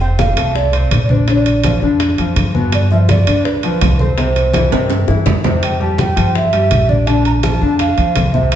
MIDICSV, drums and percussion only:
0, 0, Header, 1, 2, 480
1, 0, Start_track
1, 0, Key_signature, -1, "major"
1, 0, Tempo, 362319
1, 1688, Time_signature, 4, 2, 24, 8
1, 11332, End_track
2, 0, Start_track
2, 0, Title_t, "Drums"
2, 10, Note_on_c, 9, 60, 32
2, 13, Note_on_c, 9, 63, 34
2, 142, Note_off_c, 9, 60, 0
2, 146, Note_off_c, 9, 63, 0
2, 249, Note_on_c, 9, 63, 93
2, 250, Note_on_c, 9, 65, 55
2, 253, Note_on_c, 9, 60, 51
2, 382, Note_off_c, 9, 63, 0
2, 383, Note_off_c, 9, 65, 0
2, 385, Note_off_c, 9, 60, 0
2, 490, Note_on_c, 9, 65, 94
2, 494, Note_on_c, 9, 60, 33
2, 622, Note_off_c, 9, 65, 0
2, 626, Note_off_c, 9, 60, 0
2, 731, Note_on_c, 9, 63, 33
2, 736, Note_on_c, 9, 60, 61
2, 864, Note_off_c, 9, 63, 0
2, 868, Note_off_c, 9, 60, 0
2, 969, Note_on_c, 9, 63, 36
2, 970, Note_on_c, 9, 65, 61
2, 972, Note_on_c, 9, 60, 36
2, 1101, Note_off_c, 9, 63, 0
2, 1103, Note_off_c, 9, 65, 0
2, 1104, Note_off_c, 9, 60, 0
2, 1208, Note_on_c, 9, 63, 75
2, 1211, Note_on_c, 9, 65, 95
2, 1215, Note_on_c, 9, 60, 33
2, 1215, Note_on_c, 9, 61, 70
2, 1340, Note_off_c, 9, 63, 0
2, 1343, Note_off_c, 9, 65, 0
2, 1347, Note_off_c, 9, 60, 0
2, 1347, Note_off_c, 9, 61, 0
2, 1445, Note_on_c, 9, 63, 81
2, 1578, Note_off_c, 9, 63, 0
2, 1691, Note_on_c, 9, 63, 33
2, 1691, Note_on_c, 9, 65, 62
2, 1692, Note_on_c, 9, 60, 50
2, 1823, Note_off_c, 9, 63, 0
2, 1823, Note_off_c, 9, 65, 0
2, 1825, Note_off_c, 9, 60, 0
2, 1931, Note_on_c, 9, 63, 32
2, 1932, Note_on_c, 9, 60, 33
2, 1934, Note_on_c, 9, 65, 63
2, 2064, Note_off_c, 9, 63, 0
2, 2065, Note_off_c, 9, 60, 0
2, 2066, Note_off_c, 9, 65, 0
2, 2167, Note_on_c, 9, 65, 80
2, 2174, Note_on_c, 9, 60, 53
2, 2174, Note_on_c, 9, 63, 100
2, 2299, Note_off_c, 9, 65, 0
2, 2307, Note_off_c, 9, 60, 0
2, 2307, Note_off_c, 9, 63, 0
2, 2413, Note_on_c, 9, 60, 31
2, 2416, Note_on_c, 9, 63, 32
2, 2545, Note_off_c, 9, 60, 0
2, 2548, Note_off_c, 9, 63, 0
2, 2649, Note_on_c, 9, 60, 69
2, 2651, Note_on_c, 9, 65, 64
2, 2653, Note_on_c, 9, 63, 36
2, 2781, Note_off_c, 9, 60, 0
2, 2784, Note_off_c, 9, 65, 0
2, 2786, Note_off_c, 9, 63, 0
2, 2888, Note_on_c, 9, 60, 33
2, 2892, Note_on_c, 9, 65, 60
2, 2896, Note_on_c, 9, 63, 33
2, 3020, Note_off_c, 9, 60, 0
2, 3025, Note_off_c, 9, 65, 0
2, 3029, Note_off_c, 9, 63, 0
2, 3128, Note_on_c, 9, 60, 32
2, 3128, Note_on_c, 9, 61, 70
2, 3131, Note_on_c, 9, 63, 69
2, 3133, Note_on_c, 9, 65, 90
2, 3260, Note_off_c, 9, 60, 0
2, 3260, Note_off_c, 9, 61, 0
2, 3264, Note_off_c, 9, 63, 0
2, 3265, Note_off_c, 9, 65, 0
2, 3372, Note_on_c, 9, 63, 73
2, 3504, Note_off_c, 9, 63, 0
2, 3609, Note_on_c, 9, 60, 53
2, 3610, Note_on_c, 9, 65, 86
2, 3613, Note_on_c, 9, 63, 32
2, 3741, Note_off_c, 9, 60, 0
2, 3743, Note_off_c, 9, 65, 0
2, 3746, Note_off_c, 9, 63, 0
2, 3849, Note_on_c, 9, 60, 33
2, 3856, Note_on_c, 9, 63, 30
2, 3981, Note_off_c, 9, 60, 0
2, 3989, Note_off_c, 9, 63, 0
2, 4089, Note_on_c, 9, 60, 51
2, 4094, Note_on_c, 9, 63, 98
2, 4094, Note_on_c, 9, 65, 66
2, 4221, Note_off_c, 9, 60, 0
2, 4226, Note_off_c, 9, 63, 0
2, 4227, Note_off_c, 9, 65, 0
2, 4333, Note_on_c, 9, 60, 34
2, 4335, Note_on_c, 9, 65, 90
2, 4466, Note_off_c, 9, 60, 0
2, 4467, Note_off_c, 9, 65, 0
2, 4575, Note_on_c, 9, 60, 65
2, 4579, Note_on_c, 9, 63, 36
2, 4707, Note_off_c, 9, 60, 0
2, 4712, Note_off_c, 9, 63, 0
2, 4812, Note_on_c, 9, 65, 63
2, 4815, Note_on_c, 9, 63, 35
2, 4818, Note_on_c, 9, 60, 35
2, 4944, Note_off_c, 9, 65, 0
2, 4948, Note_off_c, 9, 63, 0
2, 4951, Note_off_c, 9, 60, 0
2, 5053, Note_on_c, 9, 60, 32
2, 5053, Note_on_c, 9, 61, 74
2, 5054, Note_on_c, 9, 65, 92
2, 5054, Note_on_c, 9, 66, 70
2, 5055, Note_on_c, 9, 63, 78
2, 5186, Note_off_c, 9, 60, 0
2, 5186, Note_off_c, 9, 61, 0
2, 5186, Note_off_c, 9, 65, 0
2, 5186, Note_off_c, 9, 66, 0
2, 5187, Note_off_c, 9, 63, 0
2, 5292, Note_on_c, 9, 63, 78
2, 5424, Note_off_c, 9, 63, 0
2, 5532, Note_on_c, 9, 60, 55
2, 5533, Note_on_c, 9, 63, 34
2, 5538, Note_on_c, 9, 65, 55
2, 5665, Note_off_c, 9, 60, 0
2, 5666, Note_off_c, 9, 63, 0
2, 5671, Note_off_c, 9, 65, 0
2, 5773, Note_on_c, 9, 60, 35
2, 5774, Note_on_c, 9, 63, 32
2, 5779, Note_on_c, 9, 65, 62
2, 5906, Note_off_c, 9, 60, 0
2, 5907, Note_off_c, 9, 63, 0
2, 5911, Note_off_c, 9, 65, 0
2, 6008, Note_on_c, 9, 63, 92
2, 6013, Note_on_c, 9, 60, 53
2, 6018, Note_on_c, 9, 65, 78
2, 6140, Note_off_c, 9, 63, 0
2, 6145, Note_off_c, 9, 60, 0
2, 6151, Note_off_c, 9, 65, 0
2, 6250, Note_on_c, 9, 63, 35
2, 6254, Note_on_c, 9, 60, 33
2, 6256, Note_on_c, 9, 65, 102
2, 6382, Note_off_c, 9, 63, 0
2, 6386, Note_off_c, 9, 60, 0
2, 6389, Note_off_c, 9, 65, 0
2, 6486, Note_on_c, 9, 60, 74
2, 6492, Note_on_c, 9, 63, 33
2, 6497, Note_on_c, 9, 65, 73
2, 6619, Note_off_c, 9, 60, 0
2, 6625, Note_off_c, 9, 63, 0
2, 6629, Note_off_c, 9, 65, 0
2, 6728, Note_on_c, 9, 60, 71
2, 6733, Note_on_c, 9, 63, 37
2, 6860, Note_off_c, 9, 60, 0
2, 6865, Note_off_c, 9, 63, 0
2, 6966, Note_on_c, 9, 61, 78
2, 6970, Note_on_c, 9, 63, 82
2, 6975, Note_on_c, 9, 66, 89
2, 7099, Note_off_c, 9, 61, 0
2, 7103, Note_off_c, 9, 63, 0
2, 7108, Note_off_c, 9, 66, 0
2, 7209, Note_on_c, 9, 63, 81
2, 7211, Note_on_c, 9, 61, 89
2, 7213, Note_on_c, 9, 66, 76
2, 7341, Note_off_c, 9, 63, 0
2, 7343, Note_off_c, 9, 61, 0
2, 7346, Note_off_c, 9, 66, 0
2, 7453, Note_on_c, 9, 63, 33
2, 7456, Note_on_c, 9, 60, 50
2, 7456, Note_on_c, 9, 65, 83
2, 7585, Note_off_c, 9, 63, 0
2, 7588, Note_off_c, 9, 60, 0
2, 7589, Note_off_c, 9, 65, 0
2, 7689, Note_on_c, 9, 63, 36
2, 7697, Note_on_c, 9, 60, 30
2, 7822, Note_off_c, 9, 63, 0
2, 7829, Note_off_c, 9, 60, 0
2, 7928, Note_on_c, 9, 63, 102
2, 7935, Note_on_c, 9, 60, 58
2, 7936, Note_on_c, 9, 65, 53
2, 8060, Note_off_c, 9, 63, 0
2, 8068, Note_off_c, 9, 60, 0
2, 8068, Note_off_c, 9, 65, 0
2, 8176, Note_on_c, 9, 65, 85
2, 8177, Note_on_c, 9, 60, 33
2, 8309, Note_off_c, 9, 65, 0
2, 8310, Note_off_c, 9, 60, 0
2, 8415, Note_on_c, 9, 63, 34
2, 8419, Note_on_c, 9, 60, 67
2, 8548, Note_off_c, 9, 63, 0
2, 8551, Note_off_c, 9, 60, 0
2, 8650, Note_on_c, 9, 65, 63
2, 8651, Note_on_c, 9, 63, 37
2, 8652, Note_on_c, 9, 60, 34
2, 8782, Note_off_c, 9, 65, 0
2, 8783, Note_off_c, 9, 63, 0
2, 8784, Note_off_c, 9, 60, 0
2, 8888, Note_on_c, 9, 65, 89
2, 8889, Note_on_c, 9, 63, 72
2, 8894, Note_on_c, 9, 60, 32
2, 8894, Note_on_c, 9, 61, 72
2, 9021, Note_off_c, 9, 63, 0
2, 9021, Note_off_c, 9, 65, 0
2, 9026, Note_off_c, 9, 60, 0
2, 9026, Note_off_c, 9, 61, 0
2, 9129, Note_on_c, 9, 63, 72
2, 9261, Note_off_c, 9, 63, 0
2, 9368, Note_on_c, 9, 63, 33
2, 9370, Note_on_c, 9, 60, 48
2, 9370, Note_on_c, 9, 65, 68
2, 9500, Note_off_c, 9, 63, 0
2, 9502, Note_off_c, 9, 65, 0
2, 9503, Note_off_c, 9, 60, 0
2, 9608, Note_on_c, 9, 60, 35
2, 9608, Note_on_c, 9, 65, 57
2, 9610, Note_on_c, 9, 63, 31
2, 9740, Note_off_c, 9, 60, 0
2, 9741, Note_off_c, 9, 65, 0
2, 9743, Note_off_c, 9, 63, 0
2, 9846, Note_on_c, 9, 65, 78
2, 9849, Note_on_c, 9, 60, 58
2, 9851, Note_on_c, 9, 63, 96
2, 9979, Note_off_c, 9, 65, 0
2, 9981, Note_off_c, 9, 60, 0
2, 9984, Note_off_c, 9, 63, 0
2, 10090, Note_on_c, 9, 60, 31
2, 10091, Note_on_c, 9, 63, 33
2, 10223, Note_off_c, 9, 60, 0
2, 10223, Note_off_c, 9, 63, 0
2, 10323, Note_on_c, 9, 65, 64
2, 10328, Note_on_c, 9, 63, 38
2, 10330, Note_on_c, 9, 60, 67
2, 10456, Note_off_c, 9, 65, 0
2, 10461, Note_off_c, 9, 63, 0
2, 10463, Note_off_c, 9, 60, 0
2, 10567, Note_on_c, 9, 65, 59
2, 10571, Note_on_c, 9, 63, 37
2, 10574, Note_on_c, 9, 60, 35
2, 10700, Note_off_c, 9, 65, 0
2, 10704, Note_off_c, 9, 63, 0
2, 10706, Note_off_c, 9, 60, 0
2, 10804, Note_on_c, 9, 65, 90
2, 10809, Note_on_c, 9, 60, 29
2, 10809, Note_on_c, 9, 61, 82
2, 10811, Note_on_c, 9, 63, 76
2, 10937, Note_off_c, 9, 65, 0
2, 10942, Note_off_c, 9, 60, 0
2, 10942, Note_off_c, 9, 61, 0
2, 10944, Note_off_c, 9, 63, 0
2, 11048, Note_on_c, 9, 63, 77
2, 11181, Note_off_c, 9, 63, 0
2, 11286, Note_on_c, 9, 65, 82
2, 11288, Note_on_c, 9, 60, 55
2, 11289, Note_on_c, 9, 63, 35
2, 11332, Note_off_c, 9, 60, 0
2, 11332, Note_off_c, 9, 63, 0
2, 11332, Note_off_c, 9, 65, 0
2, 11332, End_track
0, 0, End_of_file